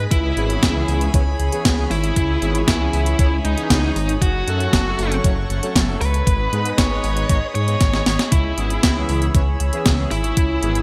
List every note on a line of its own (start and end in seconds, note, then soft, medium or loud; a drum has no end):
0.00 4.18 G#4 medium
0.00 4.18 B5 medium
0.11 0.32 C#2 loud
0.11 1.04 E4 loud
0.11 6.23 C#5 medium
0.11 4.18 G#5 medium
0.11 kick loud
0.11 closed hi-hat medium
0.37 0.57 G#1 medium
0.37 0.72 E3 medium
0.37 0.72 B3 medium
0.37 0.73 C#4 medium
0.37 0.72 G#4 loud
0.37 closed hi-hat medium
0.50 closed hi-hat medium
0.63 0.83 C#2 medium
0.63 kick loud
0.63 snare loud
0.63 closed hi-hat medium
0.75 1.11 E3 loud
0.75 1.11 B3 medium
0.75 1.11 C#4 medium
0.75 1.11 G#4 loud
0.88 1.09 C#2 medium
0.88 open hi-hat medium
1.01 closed hi-hat medium
1.14 1.35 C#2 medium
1.14 1.22 E3 loud
1.14 1.22 B3 medium
1.14 1.22 C#4 medium
1.14 1.22 C#5 loud
1.14 kick loud
1.14 closed hi-hat medium
1.39 1.50 C#2 medium
1.39 closed hi-hat medium
1.52 1.75 E3 loud
1.52 1.75 B3 medium
1.52 1.75 C#4 medium
1.52 1.75 G#4 loud
1.52 closed hi-hat medium
1.65 1.86 C#2 loud
1.65 kick loud
1.65 snare loud
1.65 closed hi-hat medium
1.78 1.90 E3 medium
1.78 1.90 B3 medium
1.78 1.90 C#4 medium
1.78 1.90 G#4 loud
1.91 2.11 G#1 medium
1.91 2.57 E4 loud
1.91 2.58 E4 medium
1.91 open hi-hat medium
2.04 closed hi-hat medium
2.16 2.37 C#2 loud
2.16 kick loud
2.16 closed hi-hat medium
2.42 2.63 G#1 medium
2.42 2.78 E3 loud
2.42 2.78 B3 medium
2.42 2.78 C#4 medium
2.42 2.78 G#4 loud
2.42 closed hi-hat medium
2.55 closed hi-hat medium
2.68 2.88 C#2 medium
2.68 3.34 E4 loud
2.68 kick loud
2.68 snare loud
2.68 closed hi-hat medium
2.81 3.16 E3 medium
2.81 3.16 B3 medium
2.81 3.16 C#4 medium
2.81 3.16 G#4 loud
2.93 3.14 C#2 loud
2.93 open hi-hat medium
3.06 closed hi-hat medium
3.19 3.40 C#2 medium
3.19 3.27 E3 loud
3.19 3.27 B3 medium
3.19 3.27 C#4 medium
3.19 3.27 C#5 loud
3.19 kick loud
3.19 closed hi-hat medium
3.45 3.55 C#2 medium
3.45 4.11 D#4 loud
3.45 closed hi-hat medium
3.57 3.80 E3 loud
3.57 3.80 B3 medium
3.57 3.80 C#4 medium
3.57 3.80 G#4 loud
3.57 closed hi-hat medium
3.70 3.91 C#2 loud
3.70 kick loud
3.70 snare loud
3.70 closed hi-hat medium
3.83 3.95 E3 loud
3.83 3.95 B3 medium
3.83 3.95 C#4 medium
3.83 3.95 G#4 loud
3.96 4.17 G#1 medium
3.96 open hi-hat medium
4.09 closed hi-hat medium
4.22 4.42 F#1 loud
4.22 5.14 F#4 loud
4.22 6.25 A4 medium
4.22 6.25 F#5 medium
4.22 6.25 C#6 medium
4.22 kick loud
4.22 closed hi-hat medium
4.47 4.68 F#2 medium
4.47 4.83 F#3 medium
4.47 4.83 A3 medium
4.47 4.83 C#4 medium
4.47 4.83 A4 loud
4.47 closed hi-hat medium
4.60 closed hi-hat medium
4.73 4.94 F#1 medium
4.73 kick loud
4.73 snare loud
4.73 closed hi-hat medium
4.86 5.21 F#3 loud
4.86 5.21 A3 medium
4.86 5.21 C#4 medium
4.86 5.21 A4 loud
4.99 5.19 F#1 loud
4.99 open hi-hat medium
5.12 closed hi-hat medium
5.24 5.45 F#1 medium
5.24 5.32 F#3 loud
5.24 5.32 A3 medium
5.24 5.32 C#4 medium
5.24 5.32 C#5 loud
5.24 kick loud
5.24 closed hi-hat medium
5.50 5.60 F#1 medium
5.50 closed hi-hat medium
5.63 5.85 F#3 loud
5.63 5.85 A3 medium
5.63 5.85 C#4 loud
5.63 5.85 A4 loud
5.63 closed hi-hat medium
5.76 5.96 F#1 loud
5.76 kick loud
5.76 snare loud
5.76 closed hi-hat medium
5.88 6.01 F#3 medium
5.88 6.01 A3 medium
5.88 6.01 C#4 medium
5.88 6.01 A4 loud
6.01 6.22 C#2 medium
6.01 6.68 B4 medium
6.01 6.68 B4 loud
6.01 open hi-hat medium
6.14 closed hi-hat medium
6.27 6.47 G#1 loud
6.27 10.82 G#4 medium
6.27 8.30 D#5 medium
6.27 10.82 B5 medium
6.27 8.30 D#6 medium
6.27 kick loud
6.27 closed hi-hat loud
6.53 6.73 G#2 medium
6.53 6.88 G#3 medium
6.53 6.88 B3 medium
6.53 6.88 D#4 medium
6.53 6.88 B4 loud
6.53 closed hi-hat medium
6.65 closed hi-hat medium
6.78 6.99 G#1 medium
6.78 7.45 C#5 loud
6.78 kick loud
6.78 snare loud
6.78 closed hi-hat loud
6.91 7.26 G#3 loud
6.91 7.26 B3 medium
6.91 7.26 D#4 medium
6.91 7.26 B4 loud
7.04 7.24 G#1 loud
7.04 open hi-hat medium
7.17 closed hi-hat medium
7.29 7.40 G#1 loud
7.29 7.37 G#3 loud
7.29 7.37 B3 medium
7.29 7.37 D#4 medium
7.29 7.37 D#5 loud
7.29 kick loud
7.29 closed hi-hat medium
7.55 7.76 G#2 medium
7.55 8.22 C#5 medium
7.55 8.22 C#5 loud
7.55 closed hi-hat medium
7.68 7.75 G#3 medium
7.68 7.75 B3 medium
7.68 7.75 D#4 medium
7.68 7.75 C#5 loud
7.68 closed hi-hat medium
7.81 8.01 G#1 loud
7.81 kick loud
7.81 snare medium
7.81 closed hi-hat medium
7.94 8.01 G#3 medium
7.94 8.01 B3 medium
7.94 8.01 D#4 medium
7.94 8.01 C#5 medium
7.94 snare medium
8.06 8.17 G#1 medium
8.06 snare medium
8.06 open hi-hat medium
8.19 snare medium
8.19 closed hi-hat medium
8.32 8.53 C#2 loud
8.32 9.24 E4 loud
8.32 10.82 C#5 medium
8.32 10.82 E6 medium
8.32 kick loud
8.32 closed hi-hat loud
8.58 8.78 G#1 medium
8.58 8.93 E3 loud
8.58 8.93 B3 medium
8.58 8.93 C#4 medium
8.58 8.93 G#4 loud
8.58 closed hi-hat medium
8.70 closed hi-hat medium
8.83 9.04 C#2 medium
8.83 kick loud
8.83 snare loud
8.83 closed hi-hat loud
8.96 9.31 E3 loud
8.96 9.32 B3 medium
8.96 9.32 C#4 medium
8.96 9.31 G#4 loud
9.09 9.29 C#2 loud
9.09 open hi-hat medium
9.22 closed hi-hat medium
9.35 9.55 C#2 medium
9.35 9.42 E3 loud
9.35 9.42 B3 medium
9.35 9.42 C#4 medium
9.35 9.42 C#5 loud
9.35 kick loud
9.35 closed hi-hat loud
9.60 9.70 C#2 medium
9.60 closed hi-hat medium
9.73 9.96 E3 loud
9.73 9.96 B3 medium
9.73 9.96 C#4 medium
9.73 9.96 G#4 loud
9.73 closed hi-hat medium
9.86 10.06 C#2 loud
9.86 kick loud
9.86 snare loud
9.86 closed hi-hat loud
9.99 10.11 E3 medium
9.99 10.11 B3 medium
9.99 10.11 C#4 medium
9.99 10.11 G#4 loud
10.11 10.32 G#1 medium
10.11 10.78 E4 medium
10.11 10.78 E4 loud
10.11 open hi-hat medium
10.24 closed hi-hat medium
10.37 10.58 C#2 medium
10.37 kick loud
10.37 closed hi-hat loud
10.63 10.82 G#1 medium
10.63 10.82 E3 loud
10.63 10.82 B3 medium
10.63 10.82 C#4 medium
10.63 10.82 G#4 loud
10.63 closed hi-hat medium
10.75 closed hi-hat medium